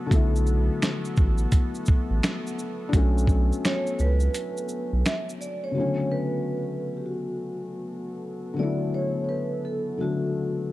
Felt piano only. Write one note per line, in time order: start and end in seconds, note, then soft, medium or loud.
0.06 2.87 D3 medium
0.06 2.89 F#3 medium
0.13 2.90 A3 medium
0.13 2.92 E4 medium
2.89 5.71 F#3 medium
2.89 5.70 D4 medium
2.95 5.73 A3 medium
2.95 5.74 C#4 medium
5.71 5.82 C#3 soft
5.71 8.53 F#3 soft
5.78 8.52 D3 medium
5.78 8.55 A3 medium
5.78 8.56 C#4 medium
8.54 9.94 D3 medium
8.54 9.96 F#3 medium
8.60 9.97 A3 medium
8.60 9.99 E4 medium
9.98 10.72 D3 soft
9.98 10.72 F#3 soft
9.98 10.72 A3 soft
10.02 10.72 D4 soft